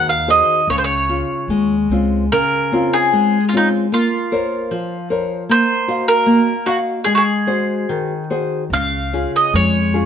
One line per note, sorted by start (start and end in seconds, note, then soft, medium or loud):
0.00 0.40 D#2 medium
0.00 0.65 D#3 medium
0.00 0.12 F#4 soft
0.00 0.12 G#4 soft
0.00 0.12 C5 medium
0.09 0.29 F5 medium
0.28 0.60 F#4 soft
0.28 0.60 G#4 soft
0.28 0.60 C5 soft
0.28 0.70 D#5 medium
0.68 1.20 C#2 medium
0.68 1.48 C#3 medium
0.68 0.75 C#5 medium
0.78 0.83 C5 medium
0.84 1.88 C#5 medium
1.09 1.74 C#4 soft
1.09 1.74 F4 soft
1.48 1.85 D#2 medium
1.48 2.29 G#3 medium
1.89 2.27 C#2 medium
1.89 2.24 C4 soft
1.89 2.24 C#4 soft
1.89 2.24 F4 soft
2.32 3.11 C#3 medium
2.32 2.95 A#4 loud
2.72 3.37 C4 medium
2.72 3.37 C#4 soft
2.72 3.38 F4 soft
2.93 3.43 G#4 medium
3.13 3.90 G#3 medium
3.49 3.54 F4 medium
3.53 3.85 C4 soft
3.53 3.85 C#4 soft
3.53 3.67 D#4 medium
3.53 3.86 F4 soft
3.92 4.69 A#3 medium
3.92 5.08 F4 medium
4.32 4.95 A#4 soft
4.32 4.95 C5 soft
4.32 4.96 C#5 soft
4.71 5.48 F3 medium
5.10 5.42 A#4 soft
5.10 5.42 C5 soft
5.10 5.43 C#5 soft
5.49 6.25 A#3 medium
5.49 6.08 C5 loud
5.88 6.51 F#4 medium
5.88 6.51 D#5 soft
5.88 6.52 F5 medium
6.08 6.69 A#4 medium
6.26 7.04 A#3 medium
6.66 6.98 F#4 soft
6.66 6.77 F#4 medium
6.66 6.99 D#5 soft
6.66 6.99 F5 soft
7.04 7.85 G#3 medium
7.04 7.12 G#4 medium
7.15 7.21 F#4 medium
7.15 8.23 G#4 medium
7.47 8.12 F#4 soft
7.47 8.12 G#4 soft
7.47 8.13 C5 medium
7.89 8.69 D#3 medium
8.30 8.63 F#4 soft
8.30 8.63 G#4 soft
8.30 8.63 C5 soft
8.70 9.24 C#2 medium
8.70 9.52 C#3 medium
8.70 9.30 F5 medium
9.13 9.78 C#4 soft
9.13 9.79 F4 soft
9.13 9.79 G#4 medium
9.36 9.55 D#5 medium
9.53 10.05 F2 medium
9.53 10.05 G#3 medium
9.53 10.05 C#5 medium
9.93 10.05 C#4 soft
9.93 10.05 F4 soft
9.93 10.05 G#4 soft